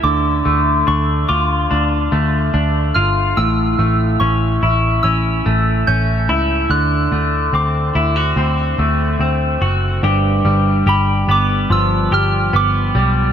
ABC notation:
X:1
M:4/4
L:1/16
Q:1/4=72
K:Aphr
V:1 name="Synth bell"
d'4 ^c'2 d'8 f'2 | e'4 ^c'4 e'4 g'4 | ^f'4 d'8- d'2 z2 | [K:Gmix] z4 b2 d'2 e'2 f'2 d'4 |]
V:2 name="Clean electric guitar"
D,2 A,2 D2 F2 D2 A,2 D2 F2 | A,,2 A,2 ^C2 E2 C2 A,2 C2 E2 | D,2 A,2 C2 E ^F C2 A,2 C2 F2 | [K:Gmix] [G,,G]2 G,2 G2 B,2 F,2 G2 B,2 G,2 |]
V:3 name="Picked electric bass" clef=bass
D,,2 D,,2 D,,2 D,,2 D,,2 D,,2 D,,2 G,,,2 | A,,,2 A,,,2 A,,,2 A,,,2 A,,,2 A,,,2 A,,,2 ^C,,2 | D,,2 D,,2 D,,2 D,,2 D,,2 D,,2 D,,2 ^F,,,2 | [K:Gmix] G,,,2 G,,,2 G,,,2 G,,,2 G,,,2 G,,,2 G,,,2 B,,,2 |]